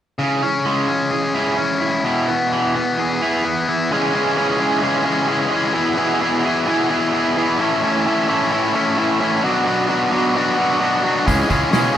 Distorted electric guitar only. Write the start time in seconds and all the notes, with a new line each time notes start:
0.19 C#3
0.43 C#4
0.66 G#3
0.88 C#4
1.11 G#4
1.34 E4
1.58 C#4
1.80 E4
2.04 B2
2.28 B3
2.52 E3
2.76 B3
2.99 G#4
3.22 E4
3.45 B3
3.68 E4
3.91 C#3 E3 G#3 C#4 G#4
4.14 C#3 E3 G#3 C#4 G#4
4.37 C#3 E3 G#3 C#4 G#4
4.59 C#3 E3 G#3 C#4 G#4
4.82 C#3 E3 G#3 C#4 G#4
5.04 C#3 E3 G#3 C#4 G#4
5.28 C#3 E3 G#3 C#4 G#4
5.50 C#3 E3 G#3 C#4 G#4
5.73 B2 E3 B3 E4 G#4
5.96 B2 E3 B3 E4 G#4
6.21 B2 E3 B3 E4 G#4
6.44 B2 E3 B3 E4 G#4
6.66 B2 E3 B3 E4 G#4
6.89 B2 E3 B3 E4 G#4
7.13 B2 E3 B3 E4 G#4
7.37 B2 E3 B3 E4 G#4
7.60 A2 E3 A3 C#4 E4
7.83 A2 E3 A3 C#4 E4
8.06 A2 E3 A3 C#4 E4
8.28 A2 E3 A3 C#4 E4
8.51 A2 E3 A3 C#4 E4
8.74 A2 E3 A3 C#4 E4
8.97 A2 E3 A3 C#4 E4
9.20 A2 E3 A3 C#4 E4
9.43 B2 F#3 B3 D4 F#4
9.66 B2 F#3 B3 D4 F#4
9.89 B2 F#3 B3 D4 F#4
10.11 B2 F#3 B3 D4 F#4
10.35 B2 F#3 B3 D4 F#4
10.57 B2 F#3 B3 D4 F#4
10.79 B2 F#3 B3 D4 F#4
11.03 B2 F#3 B3 D4 F#4
11.26 C#3 E3 G#3 C#4 G#4
11.48 C#3 E3 G#3 C#4 G#4
11.71 C#3 E3 G#3 C#4 G#4
11.93 C#3